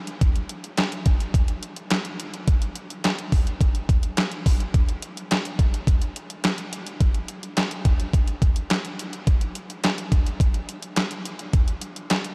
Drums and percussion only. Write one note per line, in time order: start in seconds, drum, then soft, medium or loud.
0.07 closed hi-hat medium
0.21 kick loud
0.21 closed hi-hat medium
0.36 closed hi-hat soft
0.49 closed hi-hat medium
0.64 closed hi-hat soft
0.77 snare loud
0.77 clap medium
0.77 closed hi-hat medium
0.92 closed hi-hat soft
1.06 kick medium
1.06 closed hi-hat medium
1.20 closed hi-hat medium
1.34 kick loud
1.34 closed hi-hat medium
1.48 closed hi-hat medium
1.63 closed hi-hat medium
1.76 closed hi-hat medium
1.90 snare loud
1.90 clap medium
1.90 closed hi-hat loud
2.05 closed hi-hat soft
2.20 closed hi-hat loud
2.34 closed hi-hat medium
2.48 kick loud
2.48 closed hi-hat medium
2.62 closed hi-hat medium
2.76 closed hi-hat medium
2.90 closed hi-hat soft
3.04 snare loud
3.04 clap medium
3.04 closed hi-hat medium
3.19 closed hi-hat soft
3.32 kick medium
3.32 open hi-hat medium
3.47 closed hi-hat medium
3.61 kick loud
3.61 closed hi-hat medium
3.75 closed hi-hat medium
3.89 kick medium
3.89 closed hi-hat medium
4.03 closed hi-hat medium
4.17 snare loud
4.17 clap medium
4.17 closed hi-hat loud
4.32 closed hi-hat soft
4.46 kick medium
4.46 open hi-hat loud
4.60 closed hi-hat soft
4.74 kick loud
4.74 closed hi-hat medium
4.89 closed hi-hat medium
5.02 closed hi-hat medium
5.17 closed hi-hat soft
5.31 snare loud
5.31 clap medium
5.31 closed hi-hat medium
5.45 closed hi-hat medium
5.59 kick medium
5.59 closed hi-hat medium
5.74 closed hi-hat medium
5.87 kick loud
5.87 closed hi-hat medium
6.02 closed hi-hat medium
6.16 closed hi-hat medium
6.30 closed hi-hat medium
6.44 snare loud
6.44 clap medium
6.44 closed hi-hat loud
6.58 closed hi-hat soft
6.73 closed hi-hat loud
6.87 closed hi-hat soft
7.01 kick loud
7.01 closed hi-hat medium
7.14 closed hi-hat medium
7.28 closed hi-hat medium
7.43 closed hi-hat soft
7.57 snare loud
7.57 clap medium
7.57 closed hi-hat medium
7.71 closed hi-hat medium
7.85 kick medium
7.85 closed hi-hat medium
8.00 closed hi-hat soft
8.13 kick loud
8.13 closed hi-hat medium
8.28 closed hi-hat medium
8.42 kick medium
8.42 closed hi-hat medium
8.56 closed hi-hat medium
8.70 snare loud
8.70 clap medium
8.70 closed hi-hat loud
8.85 closed hi-hat medium
8.99 closed hi-hat medium
9.13 closed hi-hat medium
9.27 kick loud
9.27 closed hi-hat medium
9.41 closed hi-hat medium
9.55 closed hi-hat medium
9.70 closed hi-hat soft
9.84 snare medium
9.84 clap medium
9.84 closed hi-hat medium
9.98 closed hi-hat medium
10.12 kick medium
10.12 closed hi-hat medium
10.26 closed hi-hat medium
10.40 kick loud
10.40 closed hi-hat loud
10.54 closed hi-hat medium
10.69 closed hi-hat medium
10.82 closed hi-hat medium
10.96 snare loud
10.96 clap medium
10.96 closed hi-hat loud
11.11 closed hi-hat medium
11.25 closed hi-hat loud
11.39 closed hi-hat medium
11.53 kick loud
11.53 closed hi-hat medium
11.68 closed hi-hat medium
11.81 closed hi-hat medium
11.96 closed hi-hat soft
12.10 snare loud
12.10 clap medium
12.10 closed hi-hat medium
12.24 closed hi-hat medium